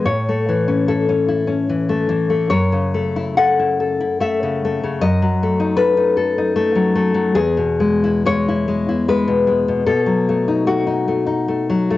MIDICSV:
0, 0, Header, 1, 2, 480
1, 0, Start_track
1, 0, Tempo, 821918
1, 26, Time_signature, 3, 2, 24, 8
1, 1466, Tempo, 891530
1, 1946, Tempo, 819672
1, 2426, Tempo, 788436
1, 4346, Tempo, 894188
1, 4826, Tempo, 804290
1, 6266, Tempo, 829876
1, 7014, End_track
2, 0, Start_track
2, 0, Title_t, "Nylon-string guitar"
2, 0, Program_c, 0, 24
2, 30, Note_on_c, 0, 45, 48
2, 31, Note_on_c, 0, 73, 66
2, 166, Note_on_c, 0, 57, 39
2, 284, Note_on_c, 0, 52, 40
2, 397, Note_on_c, 0, 61, 44
2, 490, Note_off_c, 0, 73, 0
2, 514, Note_on_c, 0, 64, 40
2, 515, Note_on_c, 0, 69, 61
2, 629, Note_off_c, 0, 61, 0
2, 636, Note_on_c, 0, 61, 39
2, 744, Note_off_c, 0, 64, 0
2, 751, Note_on_c, 0, 64, 42
2, 853, Note_off_c, 0, 61, 0
2, 860, Note_on_c, 0, 61, 37
2, 873, Note_off_c, 0, 57, 0
2, 983, Note_off_c, 0, 52, 0
2, 990, Note_on_c, 0, 52, 39
2, 1105, Note_on_c, 0, 57, 39
2, 1202, Note_off_c, 0, 69, 0
2, 1213, Note_off_c, 0, 52, 0
2, 1220, Note_on_c, 0, 52, 45
2, 1335, Note_off_c, 0, 57, 0
2, 1342, Note_on_c, 0, 57, 37
2, 1445, Note_off_c, 0, 45, 0
2, 1460, Note_on_c, 0, 73, 73
2, 1465, Note_off_c, 0, 52, 0
2, 1465, Note_off_c, 0, 57, 0
2, 1465, Note_off_c, 0, 61, 0
2, 1465, Note_on_c, 0, 42, 58
2, 1469, Note_off_c, 0, 64, 0
2, 1582, Note_on_c, 0, 49, 42
2, 1700, Note_on_c, 0, 57, 46
2, 1818, Note_on_c, 0, 64, 46
2, 1924, Note_off_c, 0, 73, 0
2, 1928, Note_off_c, 0, 64, 0
2, 1930, Note_on_c, 0, 78, 70
2, 1934, Note_on_c, 0, 69, 47
2, 2059, Note_on_c, 0, 64, 45
2, 2172, Note_off_c, 0, 69, 0
2, 2179, Note_on_c, 0, 69, 44
2, 2291, Note_off_c, 0, 64, 0
2, 2298, Note_on_c, 0, 64, 45
2, 2307, Note_off_c, 0, 49, 0
2, 2398, Note_off_c, 0, 78, 0
2, 2407, Note_off_c, 0, 57, 0
2, 2414, Note_on_c, 0, 57, 42
2, 2419, Note_on_c, 0, 76, 72
2, 2551, Note_on_c, 0, 49, 43
2, 2677, Note_off_c, 0, 57, 0
2, 2684, Note_on_c, 0, 57, 46
2, 2792, Note_off_c, 0, 49, 0
2, 2799, Note_on_c, 0, 49, 39
2, 2884, Note_off_c, 0, 42, 0
2, 2886, Note_off_c, 0, 76, 0
2, 2904, Note_off_c, 0, 64, 0
2, 2904, Note_off_c, 0, 69, 0
2, 2907, Note_on_c, 0, 42, 55
2, 2908, Note_on_c, 0, 75, 81
2, 2913, Note_off_c, 0, 49, 0
2, 2916, Note_off_c, 0, 57, 0
2, 3035, Note_on_c, 0, 54, 43
2, 3160, Note_on_c, 0, 57, 47
2, 3264, Note_on_c, 0, 63, 52
2, 3357, Note_off_c, 0, 75, 0
2, 3367, Note_on_c, 0, 71, 66
2, 3370, Note_on_c, 0, 69, 49
2, 3484, Note_off_c, 0, 63, 0
2, 3492, Note_on_c, 0, 63, 47
2, 3604, Note_off_c, 0, 69, 0
2, 3611, Note_on_c, 0, 69, 50
2, 3732, Note_off_c, 0, 63, 0
2, 3737, Note_off_c, 0, 54, 0
2, 3740, Note_on_c, 0, 63, 48
2, 3840, Note_off_c, 0, 57, 0
2, 3847, Note_on_c, 0, 57, 48
2, 3968, Note_on_c, 0, 54, 44
2, 4065, Note_off_c, 0, 71, 0
2, 4082, Note_off_c, 0, 57, 0
2, 4089, Note_on_c, 0, 57, 50
2, 4197, Note_off_c, 0, 54, 0
2, 4204, Note_on_c, 0, 54, 41
2, 4321, Note_off_c, 0, 42, 0
2, 4329, Note_on_c, 0, 40, 58
2, 4331, Note_on_c, 0, 68, 84
2, 4338, Note_off_c, 0, 54, 0
2, 4343, Note_off_c, 0, 57, 0
2, 4344, Note_off_c, 0, 69, 0
2, 4349, Note_off_c, 0, 63, 0
2, 4451, Note_on_c, 0, 47, 39
2, 4575, Note_on_c, 0, 56, 48
2, 4702, Note_on_c, 0, 64, 48
2, 4799, Note_off_c, 0, 68, 0
2, 4813, Note_off_c, 0, 56, 0
2, 4819, Note_on_c, 0, 56, 47
2, 4824, Note_on_c, 0, 73, 86
2, 4947, Note_off_c, 0, 64, 0
2, 4955, Note_on_c, 0, 64, 52
2, 5063, Note_off_c, 0, 56, 0
2, 5070, Note_on_c, 0, 56, 45
2, 5187, Note_off_c, 0, 47, 0
2, 5188, Note_off_c, 0, 64, 0
2, 5195, Note_on_c, 0, 64, 45
2, 5294, Note_off_c, 0, 73, 0
2, 5306, Note_off_c, 0, 56, 0
2, 5312, Note_on_c, 0, 56, 47
2, 5314, Note_on_c, 0, 71, 67
2, 5427, Note_on_c, 0, 47, 41
2, 5536, Note_off_c, 0, 56, 0
2, 5543, Note_on_c, 0, 56, 49
2, 5663, Note_off_c, 0, 47, 0
2, 5670, Note_on_c, 0, 47, 46
2, 5762, Note_off_c, 0, 40, 0
2, 5771, Note_off_c, 0, 47, 0
2, 5774, Note_off_c, 0, 71, 0
2, 5778, Note_on_c, 0, 47, 56
2, 5779, Note_on_c, 0, 69, 80
2, 5787, Note_off_c, 0, 56, 0
2, 5795, Note_off_c, 0, 64, 0
2, 5896, Note_on_c, 0, 54, 40
2, 6030, Note_on_c, 0, 57, 50
2, 6144, Note_on_c, 0, 63, 47
2, 6239, Note_off_c, 0, 69, 0
2, 6250, Note_off_c, 0, 57, 0
2, 6257, Note_on_c, 0, 57, 45
2, 6259, Note_on_c, 0, 66, 68
2, 6367, Note_off_c, 0, 63, 0
2, 6374, Note_on_c, 0, 63, 44
2, 6489, Note_off_c, 0, 57, 0
2, 6496, Note_on_c, 0, 57, 44
2, 6597, Note_off_c, 0, 63, 0
2, 6604, Note_on_c, 0, 63, 43
2, 6616, Note_off_c, 0, 54, 0
2, 6723, Note_off_c, 0, 57, 0
2, 6730, Note_on_c, 0, 57, 43
2, 6853, Note_on_c, 0, 54, 42
2, 6959, Note_off_c, 0, 66, 0
2, 6967, Note_off_c, 0, 57, 0
2, 6974, Note_on_c, 0, 57, 46
2, 7014, Note_off_c, 0, 47, 0
2, 7014, Note_off_c, 0, 54, 0
2, 7014, Note_off_c, 0, 57, 0
2, 7014, Note_off_c, 0, 63, 0
2, 7014, End_track
0, 0, End_of_file